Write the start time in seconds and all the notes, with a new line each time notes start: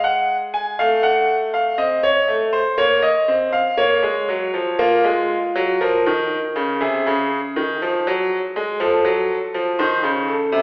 Already playing: G#3
0.04 F#5
0.54 G#5
0.79 A3 F5
1.03 F#5
1.54 F5
1.78 C4 D#5
2.03 C#5
2.28 A3
2.53 C5
2.78 A#3 C#5
3.02 D#5
3.28 C4
3.53 F5
3.77 A#3 C#5
4.03 G#3
4.29 F#3
4.54 F3
4.79 A#3 F4
5.04 G#3
5.55 F#3
5.81 F3 A#4
6.06 D#3
6.56 C#3
6.81 C3 G#4
7.07 C#3
7.56 D#3
7.82 F3
8.07 F#3
8.56 G#3
8.80 F3 A4
9.05 F#3
9.54 F3
9.79 D#3 C5
10.03 C#3
10.28 A4
10.52 C3